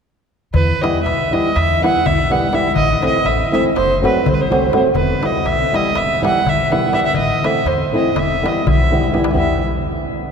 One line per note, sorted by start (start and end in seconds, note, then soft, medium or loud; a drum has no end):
0.54 0.71 E2 medium
0.54 0.83 B4 medium
0.54 darbuka dum medium
0.82 0.98 E3 soft
0.82 0.98 G3 soft
0.82 0.98 B3 soft
0.82 0.99 E4 medium
0.82 1.03 D#5 medium
0.82 darbuka tek medium
1.03 1.22 B1 medium
1.03 1.34 E5 medium
1.03 darbuka tek medium
1.20 darbuka tek soft
1.31 1.48 E3 medium
1.31 1.48 G3 medium
1.31 1.48 B3 soft
1.31 1.48 E4 medium
1.31 1.57 D#5 medium
1.31 darbuka tek soft
1.45 darbuka tek soft
1.56 1.86 E2 medium
1.56 1.84 E5 loud
1.56 darbuka tek medium
1.81 1.98 E3 medium
1.81 1.99 G3 soft
1.81 1.99 B3 medium
1.81 1.99 E4 medium
1.81 2.07 F#5 medium
1.81 darbuka tek medium
2.06 2.47 B1 medium
2.06 2.33 E5 medium
2.06 darbuka dum medium
2.30 2.46 E3 medium
2.30 2.46 G3 medium
2.30 2.46 B3 medium
2.30 2.47 E4 medium
2.30 2.56 F#5 medium
2.30 darbuka tek medium
2.52 2.67 E3 medium
2.52 2.67 G3 medium
2.52 2.68 B3 medium
2.52 2.68 E4 medium
2.52 2.75 E5 medium
2.52 darbuka tek medium
2.76 2.92 A1 medium
2.76 3.02 D#5 loud
2.76 darbuka dum medium
3.00 3.17 E3 medium
3.00 3.17 A3 soft
3.00 3.17 C4 soft
3.00 3.18 E4 medium
3.00 darbuka tek medium
3.05 3.27 D#5 medium
3.25 3.42 A1 medium
3.25 3.52 E5 medium
3.25 darbuka tek medium
3.51 3.68 E3 medium
3.51 3.68 A3 soft
3.51 3.68 C4 soft
3.51 3.68 E4 medium
3.51 3.63 E5 medium
3.51 darbuka tek medium
3.65 darbuka tek soft
3.75 4.06 F#1 medium
3.75 4.02 C5 loud
3.75 darbuka tek medium
4.01 4.18 F#3 medium
4.01 4.18 A3 medium
4.01 4.18 C4 medium
4.01 4.19 F#4 medium
4.01 darbuka tek medium
4.06 4.30 B4 medium
4.26 4.67 C2 medium
4.26 4.35 C5 medium
4.26 darbuka dum medium
4.34 4.43 B4 medium
4.41 4.79 C5 medium
4.41 darbuka tek soft
4.50 4.65 F#3 medium
4.50 4.66 A3 medium
4.50 4.66 C4 medium
4.50 4.66 F#4 medium
4.50 darbuka tek medium
4.72 4.87 F#3 medium
4.72 4.88 A3 medium
4.72 4.88 C4 medium
4.72 4.88 F#4 medium
4.72 darbuka tek medium
4.94 5.11 E1 medium
4.94 5.27 B4 medium
4.94 darbuka dum medium
5.21 5.37 E3 soft
5.21 5.37 G3 soft
5.21 5.38 B3 medium
5.21 5.38 E4 soft
5.21 darbuka tek medium
5.26 5.47 D#5 medium
5.45 5.62 B1 medium
5.45 5.77 E5 medium
5.45 darbuka tek medium
5.61 darbuka tek soft
5.72 5.88 E3 medium
5.72 5.88 G3 medium
5.72 5.88 B3 soft
5.72 5.89 E4 medium
5.72 5.99 D#5 medium
5.72 darbuka tek medium
5.86 darbuka tek soft
5.95 6.26 E1 medium
5.95 6.24 E5 loud
5.95 darbuka tek medium
6.22 6.38 E3 medium
6.22 6.38 G3 medium
6.22 6.39 B3 medium
6.22 6.39 E4 medium
6.22 6.50 F#5 medium
6.22 darbuka tek medium
6.46 6.87 B1 medium
6.46 6.73 E5 medium
6.46 darbuka dum medium
6.60 darbuka tek soft
6.70 6.86 E3 medium
6.70 6.86 G3 medium
6.70 6.87 B3 medium
6.70 6.87 E4 medium
6.70 6.96 F#5 medium
6.70 darbuka tek soft
6.92 7.08 E3 medium
6.92 7.08 G3 soft
6.92 7.08 B3 soft
6.92 7.09 E4 medium
6.92 6.99 E5 medium
6.92 darbuka tek medium
6.98 7.07 F#5 medium
7.06 7.16 E5 medium
7.14 7.32 A1 medium
7.14 7.47 D#5 medium
7.14 darbuka dum medium
7.29 darbuka tek soft
7.43 7.58 E3 soft
7.43 7.59 A3 soft
7.43 7.59 C4 soft
7.43 7.59 E4 medium
7.43 7.69 E5 medium
7.43 darbuka tek medium
7.54 darbuka tek soft
7.65 7.82 E2 medium
7.65 7.95 C5 medium
7.65 darbuka tek medium
7.81 darbuka tek soft
7.92 8.09 E3 medium
7.92 8.09 A3 soft
7.92 8.09 C4 medium
7.92 8.09 E4 medium
7.92 8.20 D#5 medium
8.05 darbuka tek soft
8.15 8.46 E1 medium
8.15 8.49 E5 medium
8.15 darbuka tek medium
8.15 darbuka dum medium
8.31 darbuka tek soft
8.42 8.59 E3 medium
8.42 8.59 G3 medium
8.42 8.60 B3 medium
8.42 8.60 E4 medium
8.42 darbuka tek medium
8.48 8.69 D#5 medium
8.57 darbuka tek soft
8.67 9.08 B1 medium
8.67 darbuka dum medium
8.71 9.18 E5 medium
8.81 darbuka dum soft
8.91 9.07 E3 medium
8.91 9.07 G3 medium
8.91 9.07 B3 medium
8.91 9.07 E4 medium
8.91 darbuka dum soft
9.04 darbuka dum medium
9.12 9.28 E3 medium
9.12 9.28 G3 soft
9.12 9.29 B3 medium
9.12 9.29 E4 medium
9.12 darbuka tek medium
9.24 darbuka tek medium
9.33 9.62 E2 medium
9.33 9.61 E3 medium
9.33 9.61 G3 medium
9.33 9.61 B3 medium
9.33 9.61 E4 medium
9.33 darbuka dum medium
9.37 9.63 E5 medium